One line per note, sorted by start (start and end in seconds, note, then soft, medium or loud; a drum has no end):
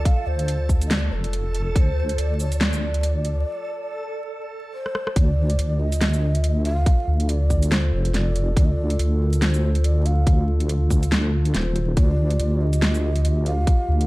0.00 3.46 F4 medium
0.00 3.46 A4 medium
0.05 0.28 F5 loud
0.05 kick loud
0.05 closed hi-hat medium
0.27 1.10 D2 medium
0.27 0.69 C5 loud
0.39 closed hi-hat soft
0.48 closed hi-hat medium
0.69 kick medium
0.69 shaker medium
0.81 closed hi-hat soft
0.81 shaker medium
0.86 0.93 D#5 medium
0.91 1.14 D5 loud
0.91 snare loud
0.91 closed hi-hat medium
1.12 1.74 F1 loud
1.12 1.77 A4 medium
1.24 closed hi-hat soft
1.33 closed hi-hat medium
1.55 closed hi-hat soft
1.76 2.17 D2 medium
1.76 1.81 D5 loud
1.76 kick loud
1.76 closed hi-hat medium
1.80 2.20 C5 loud
2.09 closed hi-hat medium
2.18 3.44 D2 medium
2.18 2.39 D5 loud
2.18 closed hi-hat medium
2.40 2.58 C#5 loud
2.40 shaker medium
2.52 closed hi-hat medium
2.52 shaker medium
2.58 4.51 D5 loud
2.58 snare loud
2.58 closed hi-hat medium
2.73 shaker medium
2.94 closed hi-hat soft
3.03 closed hi-hat medium
3.25 closed hi-hat soft
4.74 5.18 C5 loud
4.86 cross-stick medium
4.95 cross-stick medium
5.07 cross-stick medium
5.16 5.57 D2 medium
5.16 14.07 F4 medium
5.16 11.99 A4 medium
5.16 5.82 D5 loud
5.16 kick loud
5.16 closed hi-hat medium
5.50 closed hi-hat medium
5.59 6.85 D2 loud
5.59 closed hi-hat medium
5.80 6.65 D#5 loud
5.92 closed hi-hat medium
5.92 shaker medium
6.01 snare loud
6.01 closed hi-hat medium
6.14 shaker soft
6.35 closed hi-hat medium
6.44 closed hi-hat medium
6.65 7.30 F5 loud
6.65 closed hi-hat medium
6.86 kick loud
6.86 closed hi-hat medium
7.08 7.91 D2 loud
7.20 closed hi-hat medium
7.29 7.73 D5 loud
7.29 closed hi-hat medium
7.50 kick medium
7.50 shaker medium
7.62 closed hi-hat medium
7.62 shaker medium
7.71 8.16 C5 loud
7.71 snare loud
7.71 closed hi-hat medium
7.93 8.55 F1 medium
8.05 closed hi-hat medium
8.14 8.57 D5 loud
8.14 snare medium
8.14 closed hi-hat medium
8.36 closed hi-hat medium
8.57 8.98 D2 loud
8.57 8.66 D5 loud
8.57 kick loud
8.57 closed hi-hat medium
8.65 8.73 D#5 medium
8.72 8.94 D5 loud
8.90 closed hi-hat medium
8.99 10.25 D2 loud
8.99 closed hi-hat medium
9.21 9.44 A#4 medium
9.33 closed hi-hat medium
9.33 shaker medium
9.42 9.86 C5 loud
9.42 snare loud
9.42 closed hi-hat medium
9.54 shaker medium
9.75 closed hi-hat medium
9.84 10.07 D5 loud
9.84 closed hi-hat medium
10.06 10.48 F5 loud
10.06 closed hi-hat medium
10.27 11.53 D2 medium
10.27 kick loud
10.27 closed hi-hat medium
10.60 closed hi-hat medium
10.69 closed hi-hat medium
10.90 kick medium
10.90 shaker medium
11.03 closed hi-hat medium
11.03 shaker soft
11.12 snare loud
11.12 closed hi-hat medium
11.45 closed hi-hat medium
11.54 11.96 D#1 loud
11.54 11.94 C5 loud
11.54 snare medium
11.54 closed hi-hat medium
11.76 closed hi-hat medium
11.97 12.38 D2 loud
11.97 14.07 G4 medium
11.97 12.62 D5 loud
11.97 kick loud
11.97 closed hi-hat medium
12.31 closed hi-hat medium
12.39 13.66 D2 loud
12.39 closed hi-hat medium
12.61 13.46 D#5 loud
12.73 closed hi-hat medium
12.73 shaker medium
12.82 snare loud
12.82 closed hi-hat medium
12.94 shaker medium
13.16 closed hi-hat medium
13.25 closed hi-hat medium
13.46 14.07 F5 loud
13.46 closed hi-hat soft
13.67 kick loud
13.67 closed hi-hat medium
13.89 14.07 D2 medium
14.01 closed hi-hat soft